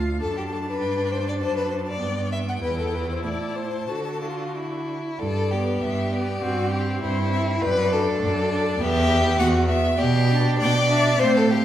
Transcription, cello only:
Already playing: D2
0.22 F#2
0.81 G2
1.40 F#2
2.00 G2
2.61 E2
3.24 A2
3.89 D3
5.19 G2
5.80 G2
6.41 G2
7.02 G2
7.62 F#2
8.22 F#2
8.80 E2
9.39 E2
9.98 B2
10.60 B2
11.19 A2

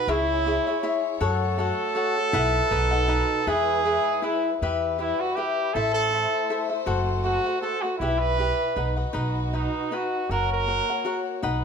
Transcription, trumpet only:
Already playing: B4
0.10 E4
1.22 A4
3.48 G#4
4.23 E4
5.01 E4
5.20 F#4
5.36 G4
5.74 A4
5.94 A4
7.24 F#4
7.62 A4
7.82 F#4
7.98 E4
8.19 B4
9.55 D#4
9.95 F#4
10.31 A#4
10.52 A#4

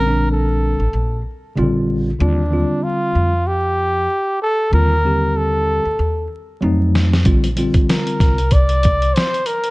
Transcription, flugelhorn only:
Already playing: A#4
0.32 A4
2.21 D4
2.83 F4
3.47 G4
4.42 A4
4.74 A#4
5.37 A4
7.90 A#4
8.53 D5
9.14 C5
9.46 A#4

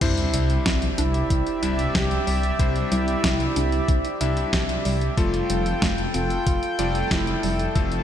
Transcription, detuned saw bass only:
0.01 C2
0.34 C2
0.66 C2
0.98 C2
1.30 C2
1.63 C2
1.95 C2
2.27 C2
2.59 C2
2.92 C2
3.24 C2
3.56 C2
3.88 C2
4.21 C2
4.53 C2
4.85 C2
5.17 F1
5.50 F1
5.82 F1
6.14 F1
6.47 F1
6.79 F1
7.11 F1
7.43 F1
7.76 F1

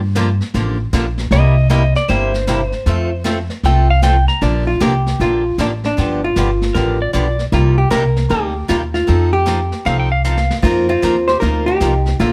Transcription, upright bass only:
Already playing: G2
0.55 A1
0.93 A#1
1.31 C2
2.09 G1
2.86 F2
3.63 C2
4.42 A#1
4.81 C2
5.20 A#1
5.58 A1
5.98 G1
6.37 G1
6.75 A1
7.14 B1
7.52 C2
7.91 C2
8.30 D2
8.70 D#2
9.09 F2
9.86 C2
10.63 F2
11.03 D#2
11.42 D2
11.81 C2
12.20 A#1

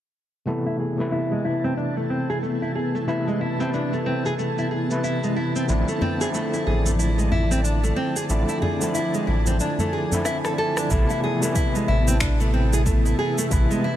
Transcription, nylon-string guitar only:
0.47 A3
0.66 E4
0.79 G#4
0.99 A3
1.12 E4
1.31 G#3
1.45 E4
1.64 C4
1.77 D4
1.97 A3
2.10 C4
2.30 G#4
2.43 A3
2.62 E4
2.75 G#4
2.95 A3
3.08 E4
3.28 G#3
3.41 E4
3.60 C4
3.74 D4
3.93 A3
4.06 C4
4.26 G#4
4.39 A3
4.58 E4
4.71 G#4
4.91 A3
5.04 E4
5.24 G#3
5.36 E4
5.56 C4
5.69 D4
5.88 A3
6.02 C4
6.21 G#4
6.34 A3
6.54 E4
6.67 G#4
6.86 A3
6.99 E4
7.18 G#3
7.32 E4
7.51 C4
7.64 D4
7.84 A3
7.96 C4
8.16 G#4
8.29 A3
8.49 E4
8.62 G#4
8.81 A3
8.95 E4
9.14 G#3
9.27 E4
9.47 C4
9.60 D4
9.80 A3
9.93 G#4
10.12 A3
10.25 E4
10.45 A4
10.58 A4
10.78 D4
10.91 A3
11.10 E4
11.24 G#4
11.43 A3
11.55 E4
11.75 G#3
11.88 E4
12.08 C4
12.21 D4
12.40 A3
12.54 C4
12.73 G#4
12.86 A3
13.05 E4
13.19 G#4
13.38 A3
13.51 E4
13.71 G#3
13.84 E4

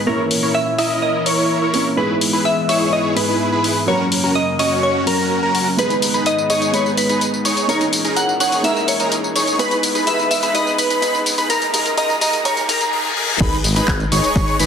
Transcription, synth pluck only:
0.07 A#4
0.55 E5
0.78 E5
1.02 D#5
1.26 C#5
1.97 B4
2.45 E5
2.69 E5
2.93 D#5
3.17 B4
3.88 C#5
4.35 D#5
4.59 D#5
4.83 C#5
5.07 A#4
5.79 B4
6.26 D#5
6.50 D#5
6.74 C#5
6.98 B4
7.69 C#5
8.17 F#5
8.40 F#5
8.64 E5
8.88 C#5
9.59 B4
10.07 E5
10.31 E5
10.55 D#5
10.79 B4
11.50 A#4
11.98 D#5
12.22 D#5
12.45 C#5
12.69 A#4

